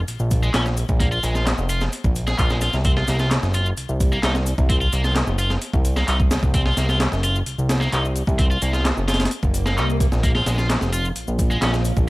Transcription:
0.08 A#1, closed hi-hat, shaker
0.20 A#1, shaker
0.31 kick, closed hi-hat, shaker
0.43 G#3, shaker
0.54 A#1 C#4, snare, clap, closed hi-hat, shaker
0.66 snare, shaker
0.77 closed hi-hat, shaker
0.89 A#1, kick, shaker
1.00 A#3, kick, closed hi-hat, shaker
1.12 F4, shaker
1.23 A#1 G#3, closed hi-hat, shaker
1.35 F4, snare, shaker
1.46 snare, clap, closed hi-hat, shaker
1.58 F1, shaker
1.69 F4, closed hi-hat, shaker
1.81 snare, shaker
1.92 closed hi-hat, shaker
2.04 A#1, kick, shaker
2.15 closed hi-hat, shaker
2.27 G#4, snare, shaker
2.39 A#1 F4, kick, clap, closed hi-hat, shaker
2.50 G#3, snare, shaker
2.61 F4, snare, closed hi-hat, shaker
2.73 C2, snare, shaker
2.85 C4, kick, closed hi-hat, shaker
2.97 F4, snare
3.08 C2 A#3, snare, closed hi-hat, shaker
3.19 F4, snare, shaker
3.31 snare, clap, closed hi-hat, shaker
3.43 F#1, snare, shaker
3.54 F4, closed hi-hat, shaker
3.66 shaker
3.77 C2, closed hi-hat, shaker
3.89 C2, shaker
4.00 kick, closed hi-hat, shaker
4.12 A#3, shaker
4.23 C2 D#4, snare, clap, closed hi-hat, shaker
4.35 snare, shaker
4.46 closed hi-hat, shaker
4.58 C2, kick, shaker
4.70 C4, kick, closed hi-hat, shaker
4.81 F4, shaker
4.93 C2 A#3, closed hi-hat, shaker
5.04 F4, snare, shaker
5.16 snare, clap, closed hi-hat, shaker
5.27 F#1, shaker
5.38 F4, closed hi-hat, shaker
5.50 snare, shaker
5.62 closed hi-hat, shaker
5.73 C2, kick, shaker
5.85 closed hi-hat, shaker
5.97 A#3, snare, shaker
6.08 C2 D#4, clap, closed hi-hat, shaker
6.20 kick, shaker
6.31 snare, closed hi-hat, shaker
6.43 C2, kick, shaker
6.54 C4, kick, closed hi-hat, shaker
6.66 F4, snare
6.77 C2 A#3, snare, closed hi-hat, shaker
6.89 F4, snare, shaker
7.00 snare, clap, closed hi-hat, shaker
7.12 F#1, snare, shaker
7.23 F4, closed hi-hat, shaker
7.36 shaker
7.46 C2, closed hi-hat, shaker
7.58 C2, shaker
7.69 snare, closed hi-hat, shaker
7.81 A#3, snare, shaker
7.93 C2 D#4, clap, closed hi-hat, shaker
8.05 shaker
8.16 closed hi-hat, shaker
8.27 C2, kick, shaker
8.39 C4, kick, closed hi-hat, shaker
8.51 F4, shaker
8.62 C2 A#3, closed hi-hat, shaker
8.73 F4, snare, shaker
8.85 snare, clap, closed hi-hat, shaker
8.97 F#1, shaker
9.08 F4, snare, closed hi-hat, shaker
9.14 snare, closed hi-hat
9.20 snare, closed hi-hat, shaker
9.25 snare, closed hi-hat
9.31 closed hi-hat, swell, shaker
9.43 F#1, kick, shaker
9.54 closed hi-hat, shaker
9.66 A#3, snare, shaker
9.78 C2 D#4, clap, shaker
9.90 shaker
10.00 kick, closed hi-hat, shaker
10.12 A#1, snare, shaker
10.24 A#3 A#4 C#5 F5, kick, closed hi-hat, shaker
10.35 F4, snare
10.46 A#1 G#3, snare, closed hi-hat, shaker
10.58 F4, snare, shaker
10.70 snare, clap, closed hi-hat, shaker
10.81 F1, snare, shaker
10.93 F4, closed hi-hat, shaker
11.05 shaker
11.16 A#1, closed hi-hat, shaker
11.28 A#1, shaker
11.39 kick, closed hi-hat, shaker
11.51 G#3, shaker
11.62 A#1 C#4, snare, clap, closed hi-hat, shaker
11.74 snare, shaker
11.85 closed hi-hat, shaker
11.97 A#1, kick, shaker

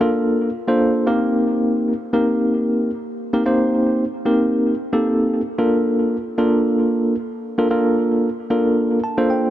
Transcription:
0.01 A#3 D4 F4 A4 A#4
0.68 A#3 D4 F4 A4 C5
1.07 A#3 C4 D#4 G4 A#4
2.13 A#3 C4 D#4 G4 A#4
3.33 A#3 C4 D#4 G4 A#4
3.46 A#3 C4 D#4 G4 C5
4.25 A#3 C4 D#4 G4 A#4
4.93 A#3 C4 D#4 G4 A4
5.58 A#3 D4 F4 A4 A#4
6.38 A#3 D4 F4 A4 A#4
7.58 A#3 D4 F4 A4 A#4
7.71 A#3 D4 F4 A4 A#4
8.50 A#3 D4 F4 A4 A#4
9.04 A5
9.17 A#3 D4 F4 A4 C5
9.30 G5

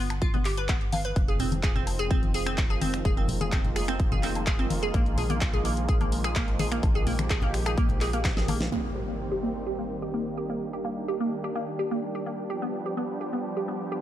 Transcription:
Already playing: G1
0.10 finger snap, closed hi-hat, high woodblock
0.22 F4, kick, closed hi-hat
0.34 B3, closed hi-hat, high conga, low conga
0.45 G4, clap, open hi-hat
0.57 B4, closed hi-hat, high woodblock
0.69 B3, kick, clap, closed hi-hat
0.81 closed hi-hat
0.93 F5, open hi-hat, high conga, high woodblock
1.05 B4, closed hi-hat
1.16 F1 D#3 F3 G#3 C4 F4, kick, closed hi-hat
1.28 G#4, closed hi-hat
1.39 C4, open hi-hat, low conga
1.52 closed hi-hat, high conga, high woodblock
1.63 G#4, kick, clap, closed hi-hat
1.76 C4, closed hi-hat, low conga
1.87 open hi-hat, high woodblock
1.99 G#4, closed hi-hat
2.11 C4, kick, closed hi-hat
2.23 closed hi-hat, high conga
2.34 G#4, open hi-hat, high woodblock
2.46 C4, finger snap, closed hi-hat
2.58 kick, clap, closed hi-hat
2.70 G#4, closed hi-hat, high woodblock
2.81 C4, open hi-hat, high conga
2.94 finger snap, closed hi-hat
3.05 F1 A#3 G#4, kick, closed hi-hat
3.17 C4, closed hi-hat, high woodblock
3.28 open hi-hat, low conga
3.41 G#4, closed hi-hat, high conga
3.52 C4, kick, clap, closed hi-hat, high woodblock
3.65 closed hi-hat, low conga
3.76 G#4, finger snap, open hi-hat
3.88 C4, finger snap, closed hi-hat
4.00 kick, closed hi-hat, high woodblock
4.12 G#4, closed hi-hat, high conga, low conga
4.23 C4, clap, open hi-hat
4.35 closed hi-hat, high woodblock
4.47 G#4, kick, clap, closed hi-hat
4.59 C4, closed hi-hat
4.70 open hi-hat, high conga
4.83 G#4, closed hi-hat, high woodblock
4.94 A#1 F3 A#3, kick, closed hi-hat
5.06 closed hi-hat
5.18 G#4, open hi-hat, low conga, high woodblock
5.30 A#3, closed hi-hat, high conga
5.41 kick, clap, closed hi-hat
5.54 G#4, closed hi-hat, low conga
5.65 A#3, open hi-hat, high woodblock
5.77 closed hi-hat
5.89 G#4, kick, closed hi-hat
6.01 A#3, closed hi-hat, high conga, high woodblock
6.12 open hi-hat
6.24 G#4, finger snap, closed hi-hat
6.35 A#3, kick, clap, closed hi-hat
6.48 closed hi-hat, high woodblock
6.59 G#4, open hi-hat, high conga
6.72 A#3, finger snap, closed hi-hat
6.83 A#1 G4, kick, closed hi-hat, high woodblock
6.95 G#4, closed hi-hat
7.07 A#3, open hi-hat, low conga
7.19 finger snap, closed hi-hat, high conga
7.30 G#4, kick, clap, closed hi-hat, high woodblock
7.42 A#3, closed hi-hat, low conga
7.54 finger snap, open hi-hat
7.66 G#4, finger snap, closed hi-hat, high woodblock
7.78 A#3, kick, closed hi-hat
7.89 closed hi-hat, high conga, low conga
8.01 G#4, clap, open hi-hat
8.13 A#3, closed hi-hat, high woodblock
8.24 kick, snare, clap, closed hi-hat
8.37 G#4, snare, closed hi-hat
8.48 A#3, open hi-hat, high conga, high woodblock
8.61 snare, closed hi-hat
8.72 D#3 G3 A#3 C4 G4, impact
8.96 G4
9.08 A#3
9.32 G4
9.43 A#3
9.67 G4
9.79 A#3
9.90 open hi-hat
10.02 G4
10.14 A#3
10.37 G4, open hi-hat
10.50 A#3
10.61 D4
10.73 G4, open hi-hat
10.85 A#3, open hi-hat
11.08 G4
11.21 A#3
11.32 open hi-hat
11.44 G4
11.56 A#3
11.79 G4, open hi-hat
11.91 A#3
12.15 G4
12.26 A#3, open hi-hat
12.50 F3 B3 G4
12.62 B3
12.74 open hi-hat
12.86 G4
12.97 B3
13.21 G4, open hi-hat
13.33 B3
13.57 G4
13.68 B3, open hi-hat
13.92 G4

